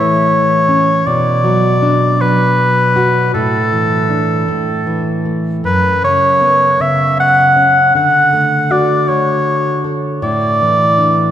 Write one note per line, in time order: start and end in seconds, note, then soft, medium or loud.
0.00 1.02 A2 medium
0.00 1.03 E3 medium
0.00 1.02 A3 soft
0.00 1.08 C#5 medium
0.69 1.05 C#4 soft
1.07 3.30 B2 medium
1.07 2.23 D5 loud
1.44 2.20 F#3 medium
1.82 3.29 D4 soft
2.21 3.30 F#3 medium
2.21 3.34 B4 medium
2.96 3.32 F#4 medium
3.34 4.46 A2 medium
3.34 5.22 A4 medium
3.73 4.47 E3 soft
4.10 4.47 D4 soft
4.48 5.61 A2 medium
4.87 5.62 E3 soft
5.25 5.63 A3 soft
5.64 7.91 F#2 medium
5.64 6.01 B4 medium
6.03 6.79 C#3 soft
6.03 6.83 C#5 medium
6.41 7.91 B3 soft
6.80 7.92 C#3 medium
6.80 7.19 E5 medium
7.20 7.92 F#5 loud
7.56 7.94 C#4 soft
7.95 10.19 D3 medium
7.95 8.73 F#5 loud
8.33 9.08 A3 soft
8.71 10.19 F#4 soft
8.71 9.10 D5 medium
9.09 10.20 A3 soft
9.09 9.96 C#5 medium
9.84 10.22 A4 soft
10.22 11.31 A2 medium
10.22 11.31 D5 loud
10.61 11.31 E3 soft
10.98 11.31 D4 soft